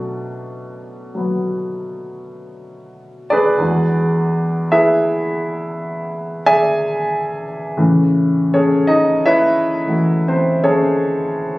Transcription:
0.00 3.61 B2 soft
0.00 1.13 F#3 soft
0.00 3.61 A3 soft
0.00 3.31 D4 medium
1.15 3.60 F#3 soft
1.15 3.61 B3 soft
3.30 3.60 D4 medium
3.30 4.63 G#4 medium
3.30 4.64 B4 medium
3.30 4.63 D5 medium
3.57 7.78 E2 soft
3.57 7.76 E3 soft
3.57 7.79 G#3 soft
3.61 7.80 D4 soft
3.61 7.80 F#4 medium
4.72 6.40 E4 medium
4.72 6.40 G#4 medium
4.72 6.40 B4 medium
4.72 6.40 E5 medium
6.46 7.44 G#4 medium
6.46 7.44 D5 medium
6.46 7.44 E5 medium
6.46 7.44 G#5 loud
7.77 11.59 A2 medium
7.77 11.59 C#3 medium
7.77 9.84 E3 medium
8.54 8.85 C#4 medium
8.54 8.85 G#4 medium
8.54 8.85 A4 medium
8.54 8.85 C#5 medium
8.87 9.20 D#4 medium
8.87 9.19 D#5 medium
9.26 10.23 E4 medium
9.26 10.23 B4 medium
9.26 10.23 C#5 medium
9.26 10.23 E5 medium
9.86 11.59 E3 soft
9.86 11.59 A3 soft
9.86 11.59 F#4 soft
10.28 10.59 C4 medium
10.28 10.60 C5 medium
10.64 11.59 C#4 medium
10.64 11.59 G#4 medium
10.64 11.59 A4 medium
10.64 11.59 C#5 medium

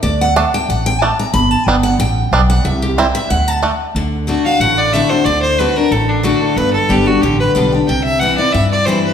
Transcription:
0.03 0.43 D2 loud
0.03 0.20 D5 loud
0.21 0.36 F#5 loud
0.36 0.44 A3 medium
0.36 0.39 D4 medium
0.36 0.53 A5 medium
0.54 0.69 G5 loud
0.69 1.09 A1 medium
0.69 0.86 F#5 medium
0.86 1.01 G5 loud
1.01 1.10 A3 medium
1.01 1.04 D4 medium
1.01 1.18 A5 loud
1.19 1.33 A#5 loud
1.33 1.54 G1 loud
1.33 1.51 B5 loud
1.51 1.66 A5 loud
1.66 1.95 G1 loud
1.66 1.75 G3 medium
1.66 1.75 B3 medium
1.66 1.75 D4 medium
1.66 1.83 G5 medium
1.83 1.99 F#5 loud
1.99 2.27 A1 medium
1.99 2.46 G5 loud
2.32 2.60 B1 medium
2.32 2.40 G3 medium
2.32 2.40 B3 medium
2.32 2.41 D4 medium
2.50 2.65 F#5 loud
2.65 3.05 C2 loud
2.65 2.82 E5 medium
2.82 2.97 G4 medium
2.98 3.06 G3 medium
2.98 3.06 C4 medium
2.98 3.06 E4 medium
2.98 3.15 C5 medium
3.15 3.30 E5 loud
3.30 3.70 D2 medium
3.30 3.48 F#5 loud
3.48 3.57 A5 loud
3.63 3.70 A3 medium
3.63 3.65 D4 medium
3.95 4.35 D2 loud
3.95 4.26 D3 medium
4.27 4.44 D3 medium
4.27 4.45 A3 medium
4.27 4.45 D4 medium
4.27 4.45 F#4 medium
4.45 4.61 D4 soft
4.45 4.61 F#4 medium
4.45 4.62 F5 loud
4.60 5.00 A1 medium
4.60 5.23 A2 medium
4.60 4.80 F#5 medium
4.78 4.94 D5 medium
4.93 5.10 D3 medium
4.93 5.11 A3 loud
4.93 5.11 D4 loud
4.93 5.09 F#4 loud
4.93 5.11 E5 loud
5.10 5.26 D4 medium
5.10 5.25 F#4 medium
5.10 5.26 C5 medium
5.25 5.65 D2 medium
5.25 5.58 D3 medium
5.25 5.42 D5 loud
5.42 5.60 C5 loud
5.59 5.76 D3 medium
5.59 5.76 A3 medium
5.59 5.76 D4 medium
5.59 5.75 F#4 medium
5.59 5.78 B4 medium
5.76 5.92 D4 medium
5.76 5.91 F#4 medium
5.76 5.93 A#4 loud
5.91 6.31 A1 medium
5.91 6.54 A2 medium
5.91 6.10 A4 medium
6.09 6.25 D4 medium
6.23 6.55 D3 medium
6.23 6.55 A3 medium
6.23 6.56 D4 loud
6.23 6.43 F#4 medium
6.23 6.56 F#4 loud
6.42 6.58 A4 medium
6.56 6.76 G1 loud
6.56 7.20 G2 medium
6.56 6.73 B4 loud
6.73 6.92 A4 loud
6.89 7.17 G1 loud
6.89 7.06 G3 medium
6.89 7.06 B3 medium
6.89 7.06 D4 medium
6.89 7.08 G4 medium
6.89 7.04 G4 medium
7.06 7.22 D4 medium
7.06 7.23 F#4 medium
7.06 7.21 G4 medium
7.22 7.50 A1 medium
7.22 7.85 D3 medium
7.22 7.39 G4 medium
7.40 7.49 B4 medium
7.55 7.83 B1 medium
7.55 7.72 G3 medium
7.55 7.72 B3 loud
7.55 7.72 D4 medium
7.55 7.71 G4 loud
7.72 7.88 D4 soft
7.72 7.87 G4 medium
7.87 8.28 C2 medium
7.87 8.51 C3 medium
7.87 8.03 G5 medium
8.04 8.21 E5 loud
8.20 8.37 E3 medium
8.20 8.38 G3 medium
8.20 8.38 C4 medium
8.20 8.37 E4 loud
8.20 8.37 F#5 loud
8.38 8.53 C4 medium
8.38 8.53 E4 medium
8.38 8.54 D5 medium
8.53 8.94 G2 medium
8.53 9.13 G2 medium
8.53 8.70 E5 loud
8.71 8.87 D5 medium
8.85 9.13 E3 medium
8.85 9.13 G3 loud
8.85 9.13 C4 medium
8.85 9.13 E4 loud
8.85 9.03 C5 medium
9.04 9.13 B4 medium

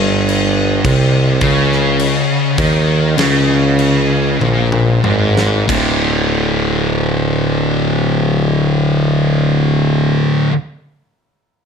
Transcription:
0.00 0.81 G1 loud
0.00 0.83 G2 loud
0.29 crash medium
0.85 1.38 C2 loud
0.85 1.40 C3 loud
0.85 kick loud
0.85 crash medium
1.41 2.24 C#2 loud
1.41 2.56 C#3 loud
1.41 kick loud
1.41 crash medium
1.72 snare soft
1.99 crash medium
2.57 3.14 D#2 medium
2.57 3.16 D#3 loud
2.57 kick loud
2.57 crash medium
3.18 4.37 C#2 loud
3.18 4.39 C#3 loud
3.18 snare loud
3.18 crash medium
3.79 crash medium
4.40 5.00 A#1 loud
4.40 5.02 A#2 loud
4.40 high tom medium
4.72 mid tom medium
5.04 5.65 G#1 medium
5.04 5.67 G#2 loud
5.04 mid tom medium
5.37 snare loud
5.67 10.45 D1 loud
5.67 10.48 D2 medium
5.67 10.50 A2 medium
5.67 kick loud
5.67 crash medium
5.71 10.52 D3 loud

